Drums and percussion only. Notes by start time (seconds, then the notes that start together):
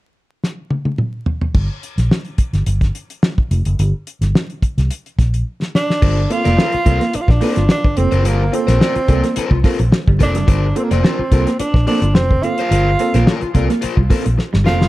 0.44 snare
0.71 high tom
0.85 high tom
0.98 mid tom
1.26 floor tom
1.41 floor tom
1.54 kick, crash
1.83 closed hi-hat
1.98 snare, closed hi-hat
2.11 snare
2.25 closed hi-hat
2.38 kick, closed hi-hat
2.54 snare, closed hi-hat
2.66 closed hi-hat
2.81 kick, snare, closed hi-hat
2.95 closed hi-hat
3.10 closed hi-hat
3.23 snare
3.38 kick
3.51 closed hi-hat
3.65 closed hi-hat
3.79 closed hi-hat
4.07 closed hi-hat
4.22 snare, closed hi-hat
4.35 snare
4.50 closed hi-hat
4.62 kick, closed hi-hat
4.78 snare, closed hi-hat
4.91 closed hi-hat
5.06 closed hi-hat
5.19 kick, snare, closed hi-hat
5.34 closed hi-hat
5.62 snare
5.75 snare
5.90 snare
6.02 kick, crash
6.31 closed hi-hat
6.45 snare, closed hi-hat
6.59 snare
6.72 closed hi-hat
6.86 kick, closed hi-hat
7.01 snare, closed hi-hat
7.13 closed hi-hat
7.28 kick, snare
7.41 open hi-hat
7.56 snare, closed hi-hat
7.69 snare
7.84 kick
7.97 closed hi-hat
8.12 closed hi-hat
8.25 closed hi-hat
8.54 closed hi-hat
8.68 snare, closed hi-hat
8.81 snare
8.95 closed hi-hat
9.08 kick, closed hi-hat
9.24 snare, closed hi-hat
9.36 closed hi-hat
9.51 kick
9.64 kick, snare, open hi-hat
9.79 closed hi-hat
9.92 snare
10.08 kick
10.20 kick, snare, closed hi-hat
10.35 snare, closed hi-hat
10.48 kick, closed hi-hat
10.76 closed hi-hat
10.91 snare, closed hi-hat
11.05 snare
11.32 kick, closed hi-hat
11.47 snare, closed hi-hat
11.60 closed hi-hat
11.74 kick, snare
11.87 open hi-hat
12.02 closed hi-hat
12.15 snare
12.31 kick
12.43 closed hi-hat
12.58 closed hi-hat
12.72 closed hi-hat
12.99 closed hi-hat
13.14 snare, closed hi-hat
13.27 snare
13.41 closed hi-hat
13.55 kick, closed hi-hat
13.70 snare, closed hi-hat
13.82 closed hi-hat
13.97 kick
14.10 kick, snare, open hi-hat
14.26 closed hi-hat
14.39 snare
14.54 snare
14.67 snare
14.81 snare